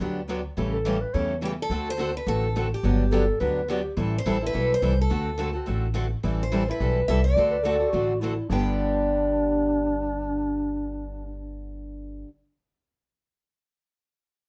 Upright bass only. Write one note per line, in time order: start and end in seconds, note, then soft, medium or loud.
0.00 0.46 D2 medium
0.57 1.03 A1 medium
1.14 1.59 E2 medium
1.70 2.15 D2 medium
2.27 2.72 A1 medium
2.83 3.29 G1 medium
3.41 3.86 D2 medium
3.97 4.20 A1 medium
4.26 4.50 A1 medium
4.55 4.78 B1 medium
4.82 5.06 C2 medium
5.11 5.56 D2 medium
5.68 6.13 A1 medium
6.24 6.69 A1 medium
6.80 7.04 B1 medium
7.08 7.32 C2 medium
7.36 7.82 D2 medium
7.93 8.38 A1 medium
8.50 12.22 G1 medium